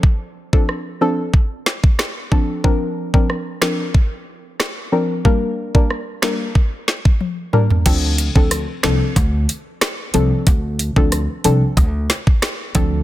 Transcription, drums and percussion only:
0.03 kick
0.53 kick
0.69 cross-stick
1.34 kick
1.66 snare
1.84 kick
1.99 cross-stick, snare
2.32 kick
2.64 kick
3.14 kick
3.30 cross-stick
3.62 cross-stick, snare
3.94 kick
4.60 cross-stick, snare
5.25 kick
5.75 kick
5.91 cross-stick
6.22 cross-stick, snare
6.55 kick
6.88 snare
7.05 kick
7.21 high tom
7.53 mid tom
7.70 floor tom
7.86 kick, closed hi-hat, crash
8.18 closed hi-hat
8.36 kick
8.51 cross-stick, closed hi-hat
8.83 cross-stick, snare, closed hi-hat
9.16 kick, closed hi-hat
9.49 closed hi-hat
9.81 cross-stick, snare, closed hi-hat
10.14 closed hi-hat
10.47 kick, closed hi-hat
10.79 closed hi-hat
10.96 kick
11.12 cross-stick, closed hi-hat
11.44 closed hi-hat
11.77 kick, closed hi-hat
12.10 snare, closed hi-hat
12.27 kick
12.42 cross-stick, snare, closed hi-hat
12.75 kick, closed hi-hat

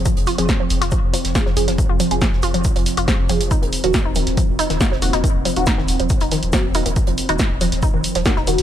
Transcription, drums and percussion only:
0.05 kick, closed hi-hat, shaker
0.17 closed hi-hat
0.27 open hi-hat, shaker
0.38 closed hi-hat
0.49 kick, snare, closed hi-hat, shaker
0.70 open hi-hat, shaker
0.82 snare, closed hi-hat
0.91 kick, closed hi-hat, shaker
1.14 open hi-hat, shaker
1.24 snare, closed hi-hat
1.35 kick, snare, closed hi-hat, shaker
1.46 snare
1.57 open hi-hat, shaker
1.68 snare, closed hi-hat
1.78 kick, closed hi-hat, shaker
2.00 open hi-hat, shaker
2.11 closed hi-hat
2.22 kick, snare, closed hi-hat, shaker
2.33 snare
2.43 open hi-hat, shaker
2.54 closed hi-hat
2.64 kick, closed hi-hat, shaker
2.76 closed hi-hat, open hi-hat
2.86 snare, open hi-hat, shaker
2.97 closed hi-hat
3.08 kick, snare, closed hi-hat, shaker
3.29 open hi-hat, shaker
3.41 closed hi-hat
3.51 kick, closed hi-hat, shaker
3.63 closed hi-hat
3.73 open hi-hat, shaker
3.84 closed hi-hat
3.94 kick, snare, closed hi-hat, shaker
4.15 open hi-hat, shaker
4.27 snare, closed hi-hat
4.37 kick, closed hi-hat, shaker
4.59 open hi-hat, shaker
4.70 snare, closed hi-hat
4.81 kick, snare, closed hi-hat, shaker
4.93 snare
5.02 open hi-hat, shaker
5.13 snare, closed hi-hat
5.24 kick, closed hi-hat, shaker
5.45 open hi-hat, shaker
5.56 closed hi-hat
5.66 kick, snare, closed hi-hat, shaker
5.79 snare
5.88 open hi-hat, shaker
6.00 closed hi-hat
6.10 kick, closed hi-hat, shaker
6.21 closed hi-hat, open hi-hat
6.31 snare, open hi-hat, shaker
6.43 closed hi-hat
6.53 kick, snare, closed hi-hat, shaker
6.75 open hi-hat, shaker
6.86 closed hi-hat
6.96 kick, closed hi-hat, shaker
7.07 closed hi-hat
7.18 open hi-hat, shaker
7.29 closed hi-hat
7.39 kick, snare, closed hi-hat, shaker
7.61 open hi-hat, shaker
7.72 snare, closed hi-hat
7.83 kick, closed hi-hat, shaker
8.04 open hi-hat, shaker
8.15 snare, closed hi-hat
8.26 kick, snare, closed hi-hat, shaker
8.36 snare
8.47 open hi-hat, shaker
8.58 snare, closed hi-hat

